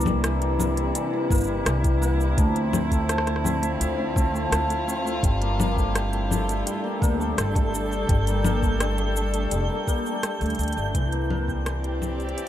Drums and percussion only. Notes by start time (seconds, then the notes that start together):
0.01 shaker
0.06 kick, low conga, shaker
0.24 cross-stick, closed hi-hat, shaker
0.42 closed hi-hat
0.59 low conga, shaker
0.77 closed hi-hat
0.95 closed hi-hat, shaker
1.30 kick, shaker
1.34 shaker
1.37 shaker
1.40 shaker
1.44 shaker
1.46 shaker
1.66 cross-stick, closed hi-hat, shaker
1.84 kick, closed hi-hat, shaker
2.03 shaker
2.21 shaker
2.38 kick, closed hi-hat, shaker
2.56 closed hi-hat
2.73 low conga, shaker
2.91 kick, closed hi-hat, shaker
3.09 cross-stick, closed hi-hat, shaker
3.18 cross-stick
3.27 cross-stick, closed hi-hat
3.36 cross-stick
3.45 low conga, shaker
3.63 closed hi-hat, shaker
3.81 closed hi-hat, shaker
4.16 kick, shaker
4.36 shaker
4.52 cross-stick, closed hi-hat, shaker
4.70 closed hi-hat, shaker
4.89 shaker
5.07 shaker
5.23 kick, closed hi-hat, shaker
5.42 closed hi-hat
5.60 low conga, shaker
5.77 kick, shaker
5.95 cross-stick, closed hi-hat, shaker
6.13 closed hi-hat
6.31 low conga, shaker
6.49 closed hi-hat, shaker
6.67 closed hi-hat, shaker
7.02 kick, shaker
7.21 shaker
7.38 cross-stick, closed hi-hat, shaker
7.55 kick, closed hi-hat, shaker
7.75 shaker
7.92 shaker
8.09 kick, closed hi-hat
8.27 closed hi-hat, shaker
8.45 low conga, shaker
8.63 kick, shaker
8.80 cross-stick, closed hi-hat, shaker
8.98 closed hi-hat
9.17 shaker
9.34 closed hi-hat, shaker
9.51 closed hi-hat, shaker
9.87 kick, shaker
10.06 shaker
10.23 cross-stick, closed hi-hat, shaker
10.41 closed hi-hat, shaker
10.46 closed hi-hat
10.50 closed hi-hat
10.55 closed hi-hat
10.59 closed hi-hat, shaker
10.63 closed hi-hat
10.68 closed hi-hat
10.73 closed hi-hat
10.78 shaker
10.95 kick, closed hi-hat, shaker
11.12 closed hi-hat
11.30 low conga
11.48 kick, shaker
11.66 cross-stick, closed hi-hat, shaker
11.84 closed hi-hat
12.02 low conga, shaker
12.20 closed hi-hat, shaker
12.29 closed hi-hat
12.38 closed hi-hat, shaker